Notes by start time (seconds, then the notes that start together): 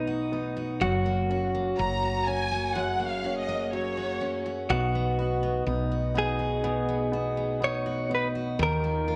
Already playing: B1 B2 F#3 B3 D#4 D#5
0.07 F#4
0.32 B3 D#4
0.57 F#4
0.81 F#1 F#2 F#3 A#3 C#4 F#4 C#5
1.06 A#3
1.30 C#4 F#4
1.55 A#3
1.79 F#1 F#3 C#4 A#5
2.03 F#4
2.27 C#4 G#5
2.51 F#4
2.75 F#2 F#3 G#4 F#5
3.00 A#3
3.08 F5
3.24 C#4 F#4
3.39 D#5
3.49 A#3
3.73 F#3 C#4 C#5
3.97 F#4
4.21 C#4
4.46 F#4
4.69 B1 B2 B3 D#4 F#4 D#5
4.95 B3
5.19 B3 F#4
5.43 B3
5.67 B1 B3 D#4
5.92 F#4
6.14 B3 D#4 G#4
6.39 F#4
6.64 B2 B3
6.89 B3
7.12 B3 F#4
7.37 B3
7.60 B3 D#4 C#5
7.86 F#4
8.10 B3 D#4
8.15 B4
8.35 F#4
8.59 D#2 D#3 A#3 F4
8.63 A#4
8.84 A#3
9.08 A#3 F4